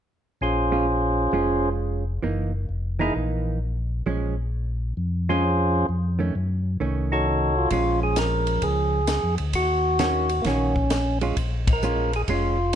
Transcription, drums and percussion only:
7.70 kick soft
7.70 ride medium
8.16 snare medium
8.16 hi-hat pedal medium
8.16 ride medium
8.47 ride soft
8.62 kick soft
8.62 ride soft
9.07 snare medium
9.07 hi-hat pedal medium
9.07 ride medium
9.38 ride soft
9.53 kick soft
9.53 ride medium
9.99 snare medium
9.99 hi-hat pedal soft
9.99 ride soft
10.29 ride soft
10.44 kick soft
10.44 snare soft
10.44 ride soft
10.76 kick soft
10.90 snare medium
10.90 hi-hat pedal medium
10.90 ride medium
11.21 ride soft
11.37 kick soft
11.37 ride medium
11.67 kick medium
11.67 ride medium
11.82 hi-hat pedal soft
12.13 ride soft
12.28 kick soft
12.28 ride soft

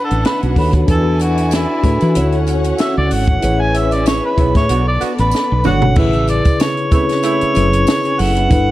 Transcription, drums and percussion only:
0.11 closed hi-hat soft
0.25 snare loud
0.25 closed hi-hat medium
0.43 closed hi-hat soft
0.56 kick medium
0.56 open hi-hat medium
0.73 kick loud
0.73 closed hi-hat soft
0.88 kick loud
0.88 closed hi-hat loud
0.88 tambourine soft
1.19 closed hi-hat medium
1.19 tambourine soft
1.38 closed hi-hat medium
1.51 snare loud
1.51 closed hi-hat medium
1.51 tambourine medium
1.84 kick medium
1.84 closed hi-hat medium
1.84 tambourine soft
2.01 closed hi-hat soft
2.01 tambourine soft
2.15 closed hi-hat loud
2.15 tambourine soft
2.32 closed hi-hat soft
2.47 closed hi-hat medium
2.47 tambourine soft
2.64 closed hi-hat soft
2.64 tambourine soft
2.78 snare loud
2.78 closed hi-hat medium
2.78 tambourine medium
3.11 open hi-hat medium
3.11 tambourine soft
3.27 kick medium
3.27 closed hi-hat medium
3.42 closed hi-hat loud
3.42 tambourine soft
3.74 closed hi-hat medium
3.74 tambourine medium
3.91 closed hi-hat medium
3.91 tambourine soft
4.06 snare loud
4.06 closed hi-hat medium
4.06 tambourine medium
4.38 kick medium
4.38 closed hi-hat medium
4.38 tambourine soft
4.55 kick medium
4.55 snare soft
4.55 closed hi-hat soft
4.55 tambourine soft
4.69 closed hi-hat loud
4.69 tambourine soft
5.01 closed hi-hat medium
5.01 tambourine soft
5.18 closed hi-hat soft
5.18 tambourine soft
5.31 snare medium
5.31 tambourine medium
5.64 mid tom medium
5.64 tambourine soft
5.82 floor tom medium
5.96 kick loud
5.96 crash loud
5.96 tambourine medium
6.13 closed hi-hat soft
6.27 closed hi-hat medium
6.27 tambourine soft
6.45 kick medium
6.45 closed hi-hat medium
6.45 tambourine soft
6.60 snare loud
6.60 closed hi-hat medium
6.60 tambourine medium
6.77 closed hi-hat soft
6.91 kick medium
6.91 closed hi-hat medium
6.91 tambourine medium
7.09 snare soft
7.09 closed hi-hat soft
7.09 tambourine soft
7.23 closed hi-hat loud
7.23 tambourine medium
7.41 closed hi-hat soft
7.55 closed hi-hat medium
7.55 tambourine medium
7.73 closed hi-hat soft
7.73 tambourine soft
7.87 snare loud
7.87 closed hi-hat medium
7.87 tambourine medium
8.03 closed hi-hat soft
8.03 tambourine soft
8.19 open hi-hat medium
8.19 tambourine medium
8.36 closed hi-hat medium
8.51 kick loud
8.51 closed hi-hat loud
8.51 tambourine medium

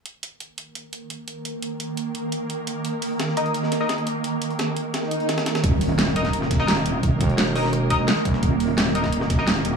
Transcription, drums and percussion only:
0.06 closed hi-hat medium
0.23 closed hi-hat medium
0.40 closed hi-hat medium
0.58 closed hi-hat medium
0.75 closed hi-hat medium
0.93 closed hi-hat medium
1.10 closed hi-hat medium
1.28 closed hi-hat medium
1.45 closed hi-hat medium
1.62 closed hi-hat medium
1.80 closed hi-hat medium
1.97 closed hi-hat medium
2.15 closed hi-hat medium
2.32 closed hi-hat medium
2.50 closed hi-hat medium
2.67 closed hi-hat medium
2.85 closed hi-hat medium
3.02 closed hi-hat medium
3.02 open hi-hat medium
3.20 snare loud
3.20 closed hi-hat medium
3.28 snare soft
3.37 closed hi-hat medium
3.46 closed hi-hat soft
3.54 closed hi-hat medium
3.63 snare soft
3.72 snare medium
3.72 closed hi-hat medium
3.89 snare loud
3.89 closed hi-hat medium
3.98 closed hi-hat soft
4.07 closed hi-hat medium
4.24 closed hi-hat medium
4.42 closed hi-hat medium
4.50 closed hi-hat soft
4.59 snare loud
4.59 closed hi-hat medium
4.76 closed hi-hat medium
4.94 snare loud
4.94 closed hi-hat medium
5.03 snare soft
5.11 closed hi-hat medium
5.20 closed hi-hat soft
5.29 snare loud
5.29 closed hi-hat medium
5.38 snare loud
5.38 closed hi-hat medium
5.46 snare loud
5.46 closed hi-hat medium
5.55 snare loud
5.55 closed hi-hat medium
5.64 kick loud
5.64 closed hi-hat medium
5.81 closed hi-hat loud
5.81 open hi-hat medium
5.99 snare loud
5.99 closed hi-hat medium
6.07 snare soft
6.16 closed hi-hat loud
6.16 closed hi-hat medium
6.25 kick medium
6.25 snare soft
6.25 closed hi-hat soft
6.33 closed hi-hat medium
6.42 cross-stick soft
6.42 snare soft
6.51 kick loud
6.51 snare medium
6.51 closed hi-hat medium
6.68 snare loud
6.68 closed hi-hat medium
6.77 closed hi-hat soft
6.86 closed hi-hat loud
6.86 closed hi-hat medium
7.03 kick loud
7.03 closed hi-hat medium
7.21 kick loud
7.21 closed hi-hat medium
7.29 closed hi-hat soft
7.38 snare loud
7.38 closed hi-hat medium
7.55 cross-stick medium
7.55 closed hi-hat medium
7.55 open hi-hat medium
7.64 snare soft
7.73 cross-stick medium
7.73 closed hi-hat medium
7.90 kick medium
7.90 closed hi-hat medium
8.08 snare loud
8.08 closed hi-hat medium
8.17 cross-stick soft
8.25 kick loud
8.25 cross-stick soft
8.25 closed hi-hat medium
8.25 closed hi-hat loud
8.34 snare medium
8.43 kick loud
8.43 closed hi-hat medium
8.60 closed hi-hat medium
8.60 open hi-hat medium
8.78 snare loud
8.78 closed hi-hat medium
8.86 snare soft
8.95 closed hi-hat medium
9.04 kick medium
9.04 snare soft
9.04 closed hi-hat soft
9.12 closed hi-hat medium
9.21 cross-stick soft
9.21 snare soft
9.30 kick loud
9.30 snare medium
9.30 closed hi-hat medium
9.47 snare loud
9.47 closed hi-hat medium
9.56 closed hi-hat soft
9.65 closed hi-hat medium

